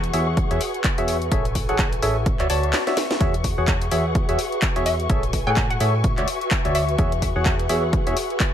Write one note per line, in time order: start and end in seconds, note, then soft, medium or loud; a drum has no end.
0.00 0.12 E2 loud
0.00 8.54 F#4 medium
0.00 1.30 G#4 medium
0.00 8.54 B4 medium
0.00 8.54 E5 medium
0.00 1.30 F#5 medium
0.00 2.26 G#5 medium
0.00 1.29 C#6 medium
0.00 closed hi-hat medium
0.13 0.48 E2 medium
0.13 0.28 F#4 medium
0.13 0.28 G#4 medium
0.13 0.28 C#5 medium
0.13 0.28 E5 loud
0.13 open hi-hat loud
0.37 kick loud
0.37 closed hi-hat medium
0.51 0.59 E2 loud
0.51 0.61 F#4 medium
0.51 0.61 G#4 medium
0.51 0.61 C#5 medium
0.51 0.61 E5 loud
0.51 closed hi-hat medium
0.61 open hi-hat loud
0.74 closed hi-hat soft
0.84 kick loud
0.84 clap loud
0.84 closed hi-hat medium
0.98 1.30 E2 medium
0.98 1.17 F#4 medium
0.98 1.17 G#4 medium
0.98 1.17 C#5 medium
0.98 1.17 E5 medium
0.98 closed hi-hat medium
1.08 open hi-hat loud
1.22 closed hi-hat soft
1.32 1.66 A1 medium
1.32 1.46 G#4 loud
1.32 2.25 A4 medium
1.32 1.46 A4 medium
1.32 1.46 C#5 medium
1.32 1.46 E5 loud
1.32 2.25 G#5 medium
1.32 8.54 C#6 medium
1.32 kick loud
1.32 closed hi-hat medium
1.45 closed hi-hat medium
1.55 kick medium
1.55 open hi-hat loud
1.69 2.00 A1 loud
1.69 1.88 G#4 loud
1.69 1.88 A4 medium
1.69 1.88 C#5 medium
1.69 1.88 F#5 loud
1.69 closed hi-hat soft
1.79 kick loud
1.79 clap loud
1.79 closed hi-hat medium
1.93 closed hi-hat medium
2.02 2.37 A1 loud
2.02 2.17 G#4 medium
2.02 2.17 A4 medium
2.02 2.17 C#5 medium
2.02 2.17 E5 loud
2.02 open hi-hat loud
2.26 3.20 F#4 medium
2.26 3.20 E5 medium
2.26 kick loud
2.26 closed hi-hat medium
2.40 2.48 D2 loud
2.40 2.48 F#4 medium
2.40 2.48 C#5 medium
2.40 2.48 D5 medium
2.40 2.48 E5 loud
2.40 clap soft
2.40 closed hi-hat medium
2.50 2.73 D2 medium
2.50 2.84 F#4 medium
2.50 2.84 C#5 medium
2.50 2.84 D5 medium
2.50 2.84 A5 medium
2.50 open hi-hat loud
2.63 closed hi-hat soft
2.73 snare medium
2.73 clap loud
2.73 open hi-hat medium
2.87 2.98 F#4 medium
2.87 2.98 C#5 medium
2.87 2.98 D5 medium
2.87 2.98 E5 medium
2.87 snare medium
2.87 closed hi-hat medium
2.97 snare medium
2.97 open hi-hat loud
3.11 snare medium
3.11 closed hi-hat soft
3.21 3.55 E2 medium
3.21 3.35 F#4 loud
3.21 5.08 G#4 medium
3.21 3.35 G#4 medium
3.21 3.35 C#5 loud
3.21 3.35 E5 loud
3.21 5.08 F#5 medium
3.21 kick loud
3.21 closed hi-hat medium
3.34 closed hi-hat medium
3.44 kick medium
3.44 open hi-hat loud
3.58 3.89 E2 loud
3.58 3.77 F#4 loud
3.58 3.77 G#4 medium
3.58 3.77 C#5 medium
3.58 3.77 F#5 loud
3.68 kick loud
3.68 clap loud
3.68 closed hi-hat medium
3.82 closed hi-hat medium
3.91 4.26 E2 loud
3.91 4.06 F#4 medium
3.91 4.06 G#4 medium
3.91 4.06 C#5 medium
3.91 4.06 E5 loud
3.91 open hi-hat loud
4.07 8.54 G#5 medium
4.15 kick loud
4.15 closed hi-hat medium
4.29 4.37 E2 loud
4.29 4.39 F#4 medium
4.29 4.39 G#4 medium
4.29 4.39 C#5 medium
4.29 4.39 E5 loud
4.29 closed hi-hat medium
4.39 open hi-hat loud
4.52 closed hi-hat soft
4.62 kick loud
4.62 clap loud
4.62 closed hi-hat medium
4.76 5.08 E2 loud
4.76 4.95 F#4 medium
4.76 4.95 G#4 medium
4.76 4.95 C#5 medium
4.76 4.95 E5 loud
4.76 closed hi-hat medium
4.86 5.05 E5 medium
4.86 open hi-hat loud
5.00 closed hi-hat soft
5.10 5.44 A1 loud
5.10 5.24 G#4 loud
5.10 5.24 A4 medium
5.10 6.03 A4 medium
5.10 5.24 C#5 medium
5.10 5.24 E5 loud
5.10 6.03 G#5 medium
5.10 kick loud
5.10 closed hi-hat medium
5.23 closed hi-hat medium
5.33 kick medium
5.33 open hi-hat loud
5.47 5.78 A2 loud
5.47 5.66 G#4 medium
5.47 5.66 A4 medium
5.47 5.66 C#5 medium
5.47 5.66 F#5 loud
5.47 5.68 G#5 medium
5.57 kick loud
5.57 clap loud
5.57 closed hi-hat medium
5.70 6.10 F#5 loud
5.70 closed hi-hat medium
5.80 6.15 A2 loud
5.80 5.95 G#4 medium
5.80 5.95 A4 medium
5.80 5.95 C#5 medium
5.80 5.95 E5 loud
5.80 open hi-hat loud
6.04 6.98 F#4 medium
6.04 6.98 E5 medium
6.04 kick loud
6.04 closed hi-hat medium
6.18 6.26 D2 loud
6.18 6.28 F#4 medium
6.18 6.28 C#5 medium
6.18 6.28 D5 medium
6.18 6.28 E5 loud
6.18 clap soft
6.18 closed hi-hat medium
6.28 open hi-hat loud
6.41 closed hi-hat soft
6.51 kick loud
6.51 clap loud
6.51 closed hi-hat medium
6.65 6.97 D2 medium
6.65 6.84 F#4 medium
6.65 6.84 C#5 medium
6.65 6.84 D5 medium
6.65 6.84 E5 loud
6.65 closed hi-hat medium
6.75 7.04 E5 medium
6.75 open hi-hat loud
6.89 closed hi-hat soft
6.98 7.33 E2 loud
6.98 7.13 F#4 loud
6.98 7.13 G#4 medium
6.98 8.54 G#4 medium
6.98 7.13 C#5 medium
6.98 7.13 E5 loud
6.98 8.54 F#5 medium
6.98 kick loud
6.98 closed hi-hat medium
7.12 closed hi-hat medium
7.22 kick medium
7.22 open hi-hat loud
7.36 7.67 E2 loud
7.36 7.55 F#4 loud
7.36 7.55 G#4 medium
7.36 7.55 C#5 medium
7.36 7.55 F#5 loud
7.46 kick loud
7.46 clap loud
7.46 closed hi-hat medium
7.59 closed hi-hat medium
7.69 8.04 E2 loud
7.69 7.84 F#4 medium
7.69 7.84 G#4 medium
7.69 7.84 C#5 medium
7.69 7.84 E5 loud
7.69 open hi-hat loud
7.93 kick loud
7.93 closed hi-hat medium
8.07 8.15 E2 loud
8.07 8.17 F#4 medium
8.07 8.17 G#4 medium
8.07 8.17 C#5 medium
8.07 8.17 E5 loud
8.07 closed hi-hat medium
8.17 open hi-hat loud
8.30 closed hi-hat soft
8.40 kick loud
8.40 clap loud
8.40 closed hi-hat medium